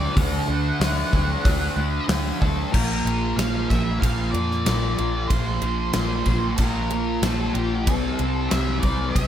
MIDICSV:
0, 0, Header, 1, 5, 480
1, 0, Start_track
1, 0, Tempo, 642398
1, 124, Time_signature, 4, 2, 24, 8
1, 6929, End_track
2, 0, Start_track
2, 0, Title_t, "Lead electric guitar"
2, 0, Program_c, 0, 29
2, 0, Note_on_c, 0, 74, 86
2, 129, Note_on_c, 0, 78, 83
2, 136, Note_off_c, 0, 74, 0
2, 1534, Note_off_c, 0, 78, 0
2, 1803, Note_on_c, 0, 69, 82
2, 2032, Note_off_c, 0, 69, 0
2, 2035, Note_on_c, 0, 70, 83
2, 2512, Note_on_c, 0, 77, 94
2, 2532, Note_off_c, 0, 70, 0
2, 2754, Note_off_c, 0, 77, 0
2, 2757, Note_on_c, 0, 76, 82
2, 2986, Note_off_c, 0, 76, 0
2, 2989, Note_on_c, 0, 77, 96
2, 3217, Note_off_c, 0, 77, 0
2, 3220, Note_on_c, 0, 74, 90
2, 3943, Note_on_c, 0, 72, 89
2, 3972, Note_off_c, 0, 74, 0
2, 4900, Note_off_c, 0, 72, 0
2, 4903, Note_on_c, 0, 70, 91
2, 5412, Note_off_c, 0, 70, 0
2, 5412, Note_on_c, 0, 69, 91
2, 5632, Note_on_c, 0, 67, 81
2, 5654, Note_off_c, 0, 69, 0
2, 5855, Note_on_c, 0, 69, 84
2, 5884, Note_off_c, 0, 67, 0
2, 6340, Note_on_c, 0, 76, 96
2, 6363, Note_off_c, 0, 69, 0
2, 6572, Note_off_c, 0, 76, 0
2, 6575, Note_on_c, 0, 74, 93
2, 6798, Note_off_c, 0, 74, 0
2, 6801, Note_on_c, 0, 76, 105
2, 6929, Note_off_c, 0, 76, 0
2, 6929, End_track
3, 0, Start_track
3, 0, Title_t, "Distorted electric guitar"
3, 0, Program_c, 1, 30
3, 0, Note_on_c, 1, 50, 76
3, 0, Note_on_c, 1, 57, 57
3, 0, Note_on_c, 1, 62, 75
3, 109, Note_off_c, 1, 50, 0
3, 117, Note_off_c, 1, 57, 0
3, 118, Note_on_c, 1, 50, 91
3, 126, Note_off_c, 1, 62, 0
3, 126, Note_on_c, 1, 57, 87
3, 135, Note_on_c, 1, 62, 101
3, 347, Note_off_c, 1, 62, 0
3, 356, Note_on_c, 1, 62, 69
3, 364, Note_off_c, 1, 57, 0
3, 373, Note_on_c, 1, 57, 59
3, 587, Note_off_c, 1, 50, 0
3, 592, Note_off_c, 1, 57, 0
3, 596, Note_on_c, 1, 50, 70
3, 597, Note_off_c, 1, 62, 0
3, 601, Note_on_c, 1, 57, 76
3, 606, Note_on_c, 1, 62, 78
3, 829, Note_off_c, 1, 62, 0
3, 838, Note_on_c, 1, 62, 80
3, 843, Note_off_c, 1, 57, 0
3, 852, Note_on_c, 1, 57, 64
3, 1066, Note_off_c, 1, 50, 0
3, 1075, Note_on_c, 1, 50, 79
3, 1076, Note_off_c, 1, 57, 0
3, 1083, Note_off_c, 1, 62, 0
3, 1084, Note_on_c, 1, 57, 96
3, 1092, Note_on_c, 1, 62, 98
3, 1310, Note_off_c, 1, 62, 0
3, 1319, Note_on_c, 1, 62, 73
3, 1322, Note_off_c, 1, 57, 0
3, 1331, Note_on_c, 1, 57, 55
3, 1539, Note_off_c, 1, 50, 0
3, 1548, Note_on_c, 1, 50, 73
3, 1551, Note_off_c, 1, 57, 0
3, 1554, Note_off_c, 1, 62, 0
3, 1560, Note_on_c, 1, 57, 75
3, 1563, Note_on_c, 1, 62, 82
3, 1783, Note_off_c, 1, 62, 0
3, 1792, Note_on_c, 1, 62, 68
3, 1800, Note_off_c, 1, 57, 0
3, 1809, Note_on_c, 1, 57, 57
3, 2020, Note_off_c, 1, 50, 0
3, 2022, Note_off_c, 1, 62, 0
3, 2030, Note_off_c, 1, 57, 0
3, 2033, Note_on_c, 1, 46, 83
3, 2043, Note_on_c, 1, 53, 91
3, 2050, Note_on_c, 1, 58, 83
3, 2277, Note_off_c, 1, 58, 0
3, 2280, Note_on_c, 1, 58, 65
3, 2289, Note_off_c, 1, 53, 0
3, 2292, Note_on_c, 1, 53, 60
3, 2516, Note_off_c, 1, 46, 0
3, 2519, Note_on_c, 1, 46, 70
3, 2521, Note_off_c, 1, 53, 0
3, 2524, Note_on_c, 1, 53, 77
3, 2532, Note_off_c, 1, 58, 0
3, 2535, Note_on_c, 1, 58, 78
3, 2765, Note_off_c, 1, 58, 0
3, 2768, Note_on_c, 1, 58, 76
3, 2780, Note_off_c, 1, 53, 0
3, 2783, Note_on_c, 1, 53, 57
3, 2994, Note_off_c, 1, 46, 0
3, 2996, Note_off_c, 1, 53, 0
3, 2997, Note_on_c, 1, 46, 80
3, 3002, Note_off_c, 1, 58, 0
3, 3005, Note_on_c, 1, 53, 92
3, 3011, Note_on_c, 1, 58, 103
3, 3227, Note_off_c, 1, 58, 0
3, 3236, Note_on_c, 1, 58, 67
3, 3245, Note_off_c, 1, 53, 0
3, 3254, Note_on_c, 1, 53, 54
3, 3469, Note_off_c, 1, 46, 0
3, 3475, Note_off_c, 1, 53, 0
3, 3478, Note_on_c, 1, 46, 68
3, 3484, Note_on_c, 1, 53, 74
3, 3486, Note_off_c, 1, 58, 0
3, 3495, Note_on_c, 1, 58, 79
3, 3710, Note_off_c, 1, 58, 0
3, 3719, Note_on_c, 1, 58, 67
3, 3723, Note_off_c, 1, 53, 0
3, 3732, Note_on_c, 1, 53, 53
3, 3950, Note_off_c, 1, 46, 0
3, 3958, Note_off_c, 1, 53, 0
3, 3959, Note_on_c, 1, 46, 89
3, 3967, Note_on_c, 1, 53, 85
3, 3968, Note_off_c, 1, 58, 0
3, 3977, Note_on_c, 1, 58, 100
3, 4192, Note_off_c, 1, 58, 0
3, 4201, Note_on_c, 1, 58, 70
3, 4209, Note_off_c, 1, 53, 0
3, 4218, Note_on_c, 1, 53, 52
3, 4418, Note_off_c, 1, 46, 0
3, 4427, Note_on_c, 1, 46, 66
3, 4428, Note_off_c, 1, 53, 0
3, 4437, Note_off_c, 1, 58, 0
3, 4437, Note_on_c, 1, 53, 72
3, 4445, Note_on_c, 1, 58, 76
3, 4659, Note_off_c, 1, 58, 0
3, 4668, Note_on_c, 1, 58, 63
3, 4680, Note_off_c, 1, 53, 0
3, 4689, Note_on_c, 1, 53, 62
3, 4904, Note_off_c, 1, 46, 0
3, 4912, Note_off_c, 1, 53, 0
3, 4913, Note_on_c, 1, 46, 90
3, 4919, Note_off_c, 1, 58, 0
3, 4921, Note_on_c, 1, 53, 84
3, 4928, Note_on_c, 1, 58, 95
3, 5151, Note_off_c, 1, 58, 0
3, 5160, Note_on_c, 1, 58, 68
3, 5169, Note_off_c, 1, 53, 0
3, 5178, Note_on_c, 1, 53, 57
3, 5393, Note_off_c, 1, 46, 0
3, 5402, Note_on_c, 1, 46, 68
3, 5404, Note_off_c, 1, 53, 0
3, 5411, Note_off_c, 1, 58, 0
3, 5413, Note_on_c, 1, 53, 72
3, 5420, Note_on_c, 1, 58, 76
3, 5629, Note_off_c, 1, 58, 0
3, 5638, Note_on_c, 1, 58, 68
3, 5649, Note_off_c, 1, 53, 0
3, 5658, Note_on_c, 1, 53, 61
3, 5865, Note_off_c, 1, 58, 0
3, 5867, Note_off_c, 1, 46, 0
3, 5875, Note_off_c, 1, 53, 0
3, 5883, Note_on_c, 1, 48, 80
3, 5892, Note_on_c, 1, 55, 93
3, 5900, Note_on_c, 1, 60, 89
3, 6124, Note_off_c, 1, 60, 0
3, 6127, Note_on_c, 1, 60, 69
3, 6143, Note_off_c, 1, 55, 0
3, 6146, Note_on_c, 1, 55, 60
3, 6367, Note_off_c, 1, 48, 0
3, 6370, Note_on_c, 1, 48, 66
3, 6374, Note_off_c, 1, 55, 0
3, 6377, Note_on_c, 1, 55, 76
3, 6382, Note_off_c, 1, 60, 0
3, 6385, Note_on_c, 1, 60, 72
3, 6593, Note_off_c, 1, 60, 0
3, 6596, Note_on_c, 1, 60, 73
3, 6614, Note_off_c, 1, 55, 0
3, 6617, Note_on_c, 1, 55, 63
3, 6832, Note_off_c, 1, 48, 0
3, 6834, Note_off_c, 1, 55, 0
3, 6835, Note_on_c, 1, 48, 79
3, 6843, Note_on_c, 1, 55, 92
3, 6848, Note_off_c, 1, 60, 0
3, 6851, Note_on_c, 1, 60, 89
3, 6929, Note_off_c, 1, 48, 0
3, 6929, Note_off_c, 1, 55, 0
3, 6929, Note_off_c, 1, 60, 0
3, 6929, End_track
4, 0, Start_track
4, 0, Title_t, "Fingered electric bass"
4, 0, Program_c, 2, 33
4, 123, Note_on_c, 2, 38, 89
4, 289, Note_off_c, 2, 38, 0
4, 362, Note_on_c, 2, 38, 88
4, 527, Note_off_c, 2, 38, 0
4, 597, Note_on_c, 2, 38, 91
4, 764, Note_off_c, 2, 38, 0
4, 844, Note_on_c, 2, 38, 95
4, 1008, Note_off_c, 2, 38, 0
4, 1085, Note_on_c, 2, 38, 96
4, 1249, Note_off_c, 2, 38, 0
4, 1315, Note_on_c, 2, 38, 90
4, 1482, Note_off_c, 2, 38, 0
4, 1556, Note_on_c, 2, 38, 90
4, 1723, Note_off_c, 2, 38, 0
4, 1805, Note_on_c, 2, 38, 86
4, 1969, Note_off_c, 2, 38, 0
4, 2045, Note_on_c, 2, 34, 88
4, 2271, Note_off_c, 2, 34, 0
4, 2280, Note_on_c, 2, 34, 92
4, 2508, Note_off_c, 2, 34, 0
4, 2514, Note_on_c, 2, 34, 80
4, 2746, Note_off_c, 2, 34, 0
4, 2767, Note_on_c, 2, 34, 91
4, 2992, Note_off_c, 2, 34, 0
4, 3006, Note_on_c, 2, 34, 85
4, 3231, Note_off_c, 2, 34, 0
4, 3240, Note_on_c, 2, 41, 85
4, 3469, Note_off_c, 2, 41, 0
4, 3490, Note_on_c, 2, 34, 89
4, 3714, Note_off_c, 2, 34, 0
4, 3728, Note_on_c, 2, 34, 89
4, 3953, Note_off_c, 2, 34, 0
4, 3961, Note_on_c, 2, 34, 87
4, 4189, Note_off_c, 2, 34, 0
4, 4199, Note_on_c, 2, 34, 93
4, 4428, Note_off_c, 2, 34, 0
4, 4441, Note_on_c, 2, 34, 83
4, 4669, Note_off_c, 2, 34, 0
4, 4681, Note_on_c, 2, 34, 88
4, 4909, Note_off_c, 2, 34, 0
4, 4920, Note_on_c, 2, 34, 97
4, 5378, Note_off_c, 2, 34, 0
4, 5395, Note_on_c, 2, 34, 87
4, 5626, Note_off_c, 2, 34, 0
4, 5638, Note_on_c, 2, 34, 84
4, 5880, Note_off_c, 2, 34, 0
4, 5880, Note_on_c, 2, 36, 81
4, 6109, Note_off_c, 2, 36, 0
4, 6122, Note_on_c, 2, 36, 93
4, 6350, Note_off_c, 2, 36, 0
4, 6364, Note_on_c, 2, 36, 76
4, 6591, Note_off_c, 2, 36, 0
4, 6601, Note_on_c, 2, 36, 93
4, 6830, Note_off_c, 2, 36, 0
4, 6839, Note_on_c, 2, 36, 91
4, 6929, Note_off_c, 2, 36, 0
4, 6929, End_track
5, 0, Start_track
5, 0, Title_t, "Drums"
5, 126, Note_on_c, 9, 36, 108
5, 128, Note_on_c, 9, 46, 65
5, 200, Note_off_c, 9, 36, 0
5, 203, Note_off_c, 9, 46, 0
5, 606, Note_on_c, 9, 46, 64
5, 608, Note_on_c, 9, 38, 107
5, 681, Note_off_c, 9, 46, 0
5, 683, Note_off_c, 9, 38, 0
5, 845, Note_on_c, 9, 36, 79
5, 920, Note_off_c, 9, 36, 0
5, 1085, Note_on_c, 9, 36, 110
5, 1086, Note_on_c, 9, 46, 67
5, 1160, Note_off_c, 9, 36, 0
5, 1160, Note_off_c, 9, 46, 0
5, 1561, Note_on_c, 9, 46, 60
5, 1563, Note_on_c, 9, 38, 116
5, 1636, Note_off_c, 9, 46, 0
5, 1638, Note_off_c, 9, 38, 0
5, 1807, Note_on_c, 9, 36, 75
5, 1882, Note_off_c, 9, 36, 0
5, 2047, Note_on_c, 9, 36, 105
5, 2047, Note_on_c, 9, 49, 107
5, 2122, Note_off_c, 9, 36, 0
5, 2122, Note_off_c, 9, 49, 0
5, 2295, Note_on_c, 9, 51, 66
5, 2369, Note_off_c, 9, 51, 0
5, 2531, Note_on_c, 9, 51, 91
5, 2534, Note_on_c, 9, 38, 102
5, 2606, Note_off_c, 9, 51, 0
5, 2608, Note_off_c, 9, 38, 0
5, 2767, Note_on_c, 9, 36, 88
5, 2772, Note_on_c, 9, 51, 62
5, 2774, Note_on_c, 9, 38, 31
5, 2842, Note_off_c, 9, 36, 0
5, 2847, Note_off_c, 9, 51, 0
5, 2849, Note_off_c, 9, 38, 0
5, 3006, Note_on_c, 9, 36, 83
5, 3013, Note_on_c, 9, 51, 99
5, 3080, Note_off_c, 9, 36, 0
5, 3088, Note_off_c, 9, 51, 0
5, 3246, Note_on_c, 9, 51, 67
5, 3321, Note_off_c, 9, 51, 0
5, 3372, Note_on_c, 9, 38, 29
5, 3447, Note_off_c, 9, 38, 0
5, 3483, Note_on_c, 9, 51, 91
5, 3485, Note_on_c, 9, 38, 108
5, 3558, Note_off_c, 9, 51, 0
5, 3560, Note_off_c, 9, 38, 0
5, 3724, Note_on_c, 9, 51, 59
5, 3799, Note_off_c, 9, 51, 0
5, 3963, Note_on_c, 9, 36, 112
5, 3963, Note_on_c, 9, 51, 96
5, 4038, Note_off_c, 9, 36, 0
5, 4038, Note_off_c, 9, 51, 0
5, 4197, Note_on_c, 9, 51, 70
5, 4271, Note_off_c, 9, 51, 0
5, 4434, Note_on_c, 9, 51, 91
5, 4436, Note_on_c, 9, 38, 105
5, 4508, Note_off_c, 9, 51, 0
5, 4510, Note_off_c, 9, 38, 0
5, 4675, Note_on_c, 9, 51, 65
5, 4680, Note_on_c, 9, 36, 80
5, 4750, Note_off_c, 9, 51, 0
5, 4755, Note_off_c, 9, 36, 0
5, 4914, Note_on_c, 9, 51, 92
5, 4920, Note_on_c, 9, 36, 84
5, 4989, Note_off_c, 9, 51, 0
5, 4995, Note_off_c, 9, 36, 0
5, 5159, Note_on_c, 9, 51, 66
5, 5234, Note_off_c, 9, 51, 0
5, 5400, Note_on_c, 9, 51, 91
5, 5402, Note_on_c, 9, 38, 113
5, 5475, Note_off_c, 9, 51, 0
5, 5477, Note_off_c, 9, 38, 0
5, 5641, Note_on_c, 9, 51, 58
5, 5715, Note_off_c, 9, 51, 0
5, 5881, Note_on_c, 9, 51, 92
5, 5882, Note_on_c, 9, 36, 113
5, 5955, Note_off_c, 9, 51, 0
5, 5956, Note_off_c, 9, 36, 0
5, 6119, Note_on_c, 9, 51, 68
5, 6193, Note_off_c, 9, 51, 0
5, 6359, Note_on_c, 9, 51, 87
5, 6362, Note_on_c, 9, 38, 102
5, 6434, Note_off_c, 9, 51, 0
5, 6436, Note_off_c, 9, 38, 0
5, 6596, Note_on_c, 9, 51, 66
5, 6600, Note_on_c, 9, 36, 85
5, 6670, Note_off_c, 9, 51, 0
5, 6675, Note_off_c, 9, 36, 0
5, 6842, Note_on_c, 9, 36, 80
5, 6844, Note_on_c, 9, 51, 90
5, 6916, Note_off_c, 9, 36, 0
5, 6919, Note_off_c, 9, 51, 0
5, 6929, End_track
0, 0, End_of_file